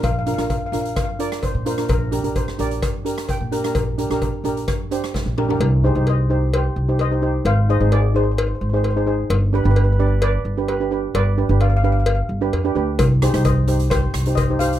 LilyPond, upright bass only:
\new Staff \with { instrumentName = "Upright bass" } { \clef bass \time 4/4 \key g \phrygian \tempo 4 = 130 bes,,8. bes,,8 r16 bes,,8 r4 r16 bes,8. | bes,,8. bes,,8 r16 bes,,8 r4 r16 bes,8. | bes,,8. bes,,8 r16 bes,,8 r4 r16 bes,,8. | \key c \minor c,8. c,4.~ c,16 c,4. |
aes,,8. aes,,4.~ aes,,16 aes,,4. | g,,8. g,,4.~ g,,16 g,,4. | g,,8. g,,4.~ g,,16 g,,8 f,8 d,8 | c,8. c,4.~ c,16 c,4. | }